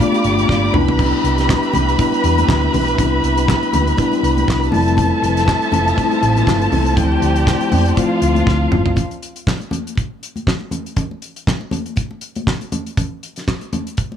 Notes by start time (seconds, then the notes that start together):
Already playing: A#3 G4 D5 F5 B5
0.00 A3 B3 D4 F4 D5 D6, kick, closed hi-hat
0.12 closed hi-hat, muted conga
0.24 G1, closed hi-hat
0.38 closed hi-hat, high conga
0.49 G1, kick, snare
0.72 C2 G3 B3 D4 E4 B4 E5 B5, mid tom, high conga, low conga
0.88 floor tom
0.99 kick, crash, muted conga, low conga
1.13 muted conga
1.24 C2, closed hi-hat
1.38 snare, closed hi-hat
1.49 kick, snare, clap, muted conga
1.63 closed hi-hat, muted conga
1.73 C2, closed hi-hat, high conga, low conga
1.88 closed hi-hat
1.98 G3 B3 D4 E4, kick, closed hi-hat, muted conga
2.12 closed hi-hat, muted conga
2.24 E2, closed hi-hat
2.38 closed hi-hat, high conga
2.48 D2, kick, snare, clap
2.64 muted conga
2.74 B1, open hi-hat, high conga, low conga
2.88 closed hi-hat
2.98 C2 G3 B3 D4 E4, kick, closed hi-hat, low conga
3.23 C2, closed hi-hat
3.37 closed hi-hat
3.48 kick, snare, clap
3.63 closed hi-hat, muted conga
3.73 D2, closed hi-hat, high conga, low conga
3.87 closed hi-hat
3.97 G3 B3 D4 E4, kick, closed hi-hat, muted conga
4.12 closed hi-hat, muted conga
4.23 C2, closed hi-hat
4.37 closed hi-hat, high conga
4.48 C2, kick, snare, clap, muted conga
4.64 closed hi-hat
4.72 F1 F3 G3 A3 C4 E4 A4 E5 A5, open hi-hat, high conga, low conga
4.88 closed hi-hat
4.97 kick, closed hi-hat, muted conga, low conga
5.22 F1, closed hi-hat
5.37 snare, closed hi-hat
5.48 kick, snare, clap, muted conga
5.62 closed hi-hat
5.72 F1, closed hi-hat, high conga, low conga
5.87 closed hi-hat
5.96 G3 A3 C4 D#4, kick, closed hi-hat
6.03 E4
6.11 closed hi-hat, muted conga
6.23 A1, closed hi-hat
6.37 closed hi-hat, high conga
6.47 G1, kick, snare, clap
6.61 closed hi-hat
6.72 C2, open hi-hat, high conga, low conga
6.86 closed hi-hat
6.96 D2 F3 A3 C4 E4 G4 C5 D5 G5, kick, closed hi-hat, muted conga, low conga
7.12 muted conga
7.22 D2, closed hi-hat
7.36 closed hi-hat
7.47 kick, snare, clap
7.61 closed hi-hat, muted conga
7.72 F2, open hi-hat, high conga, low conga
7.86 closed hi-hat
7.96 F3 A3 C4 F4 F5, kick, closed hi-hat, muted conga
8.22 D2, closed hi-hat
8.35 closed hi-hat, high conga
8.47 D2, kick, snare, muted conga
8.72 G1, mid tom, high conga, low conga
8.86 floor tom
8.96 kick, closed hi-hat, muted conga, low conga
9.11 closed hi-hat
9.23 closed hi-hat
9.36 closed hi-hat
9.47 kick, snare, clap, muted conga
9.60 closed hi-hat, muted conga
9.71 closed hi-hat, high conga, low conga
9.87 closed hi-hat
9.95 kick, closed hi-hat, muted conga
10.23 closed hi-hat
10.36 closed hi-hat, high conga
10.47 kick, snare, clap, muted conga
10.61 muted conga
10.71 closed hi-hat, high conga, low conga
10.86 closed hi-hat
10.96 kick, closed hi-hat, muted conga, low conga
11.11 muted conga
11.22 closed hi-hat
11.36 closed hi-hat
11.47 kick, snare, clap
11.61 muted conga
11.71 closed hi-hat, high conga, low conga
11.86 closed hi-hat
11.96 kick, closed hi-hat, muted conga
12.11 muted conga
12.21 closed hi-hat
12.35 closed hi-hat, high conga
12.47 kick, snare, clap, muted conga
12.61 closed hi-hat, muted conga
12.72 closed hi-hat, high conga, low conga
12.86 closed hi-hat
12.97 kick, closed hi-hat, muted conga, low conga
13.23 closed hi-hat
13.36 snare, closed hi-hat
13.48 kick, snare, clap
13.61 closed hi-hat, muted conga
13.73 closed hi-hat, high conga, low conga
13.87 closed hi-hat
13.97 kick, closed hi-hat
14.12 muted conga